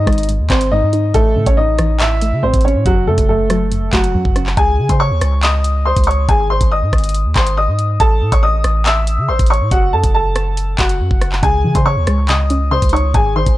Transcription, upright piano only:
0.00 0.27 D#4 medium
0.00 0.26 D#5 medium
0.50 0.69 C4 medium
0.50 0.68 C5 medium
0.71 1.12 D#4 medium
0.71 1.12 D#5 medium
1.14 1.45 A3 medium
1.14 1.45 A4 loud
1.46 1.56 C#4 medium
1.46 1.55 C#5 medium
1.57 1.98 D#4 medium
1.57 1.97 D#5 medium
2.00 2.41 E4 medium
2.00 2.40 E5 medium
2.43 2.61 C4 medium
2.43 2.61 C5 medium
2.65 2.83 C#4 medium
2.65 2.83 C#5 medium
2.86 3.04 F#3 medium
2.86 3.04 F#4 medium
3.07 3.26 A3 medium
3.07 3.25 A4 medium
3.29 3.90 A3 medium
3.29 3.89 A4 medium
3.93 4.54 F#3 medium
3.93 4.53 F#4 medium
4.57 4.88 G#4 medium
4.57 4.87 G#5 loud
4.90 4.99 C5 medium
4.90 4.98 C6 medium
5.00 5.41 C#5 medium
5.00 5.40 C#6 medium
5.43 5.83 D#5 medium
5.43 5.83 D#6 medium
5.86 6.04 C5 medium
5.86 6.04 C6 medium
6.07 6.26 C#5 medium
6.07 6.25 C#6 medium
6.29 6.47 G#4 medium
6.29 6.47 G#5 medium
6.50 6.69 C5 medium
6.50 6.68 C6 medium
6.71 7.12 D#5 medium
6.71 7.12 D#6 medium
7.36 7.54 C5 medium
7.36 7.54 C6 medium
7.57 7.98 D#5 medium
7.57 7.98 D#6 medium
8.00 8.31 A4 medium
8.00 8.30 A5 loud
8.32 8.42 C#5 medium
8.32 8.41 C#6 medium
8.43 8.84 D#5 medium
8.43 8.83 D#6 medium
8.86 9.26 E5 medium
8.86 9.26 E6 medium
9.28 9.47 C5 medium
9.28 9.47 C6 medium
9.50 9.69 C#5 medium
9.50 9.68 C#6 medium
9.72 9.90 F#4 medium
9.72 9.90 F#5 medium
9.93 10.11 A4 medium
9.93 10.11 A5 medium
10.14 10.75 A4 medium
10.14 10.75 A5 medium
10.79 11.40 F#4 medium
10.79 11.39 F#5 medium
11.43 11.74 G#4 medium
11.43 11.73 G#5 loud
11.75 11.85 C5 medium
11.75 11.84 C6 medium
11.86 12.26 C#5 medium
11.86 12.26 C#6 medium
12.28 12.69 D#5 medium
12.28 12.69 D#6 medium
12.71 12.90 C5 medium
12.71 12.89 C6 medium
12.93 13.11 C#5 medium
12.93 13.11 C#6 medium
13.15 13.33 G#4 medium
13.15 13.32 G#5 medium
13.36 13.54 C5 medium
13.36 13.54 C6 medium

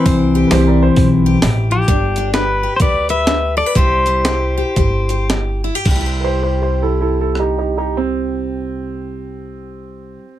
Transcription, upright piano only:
0.47 0.51 B4 medium
0.51 0.66 G4 medium
0.51 0.66 C5 medium
0.67 0.81 A#4 medium
0.67 0.82 D5 medium
0.83 1.06 C5 medium
6.20 6.41 G4 medium
6.20 6.25 B4 medium
6.24 6.42 C5 medium
6.42 6.61 G4 medium
6.42 6.61 C5 medium
6.62 6.80 G4 medium
6.62 6.81 C5 medium
6.82 6.99 E4 medium
6.82 7.00 A4 medium
7.01 7.18 E4 medium
7.01 7.20 A4 medium
7.20 7.38 E4 medium
7.20 7.39 A4 medium
7.40 7.57 D#4 medium
7.40 7.57 G4 medium
7.58 7.76 D#4 medium
7.58 7.77 G4 medium
7.78 7.95 D#4 medium
7.78 7.96 G4 medium
7.97 10.39 C4 medium

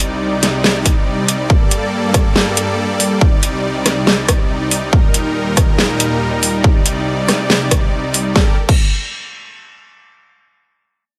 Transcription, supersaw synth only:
0.00 1.48 C2 medium
0.00 1.48 C3 medium
0.00 4.89 G3 medium
0.00 1.48 D#4 medium
0.00 4.89 D5 medium
1.50 3.20 G2 medium
1.50 3.20 A4 medium
3.21 4.91 C3 medium
4.93 6.63 D#2 medium
4.93 6.63 A#2 medium
4.93 8.32 G3 medium
4.93 6.63 A#4 medium
6.64 8.34 D5 medium
8.36 8.56 G3 medium
8.36 8.56 G4 medium
8.36 8.56 A4 medium
8.36 8.56 A#4 medium
8.36 8.56 D5 medium

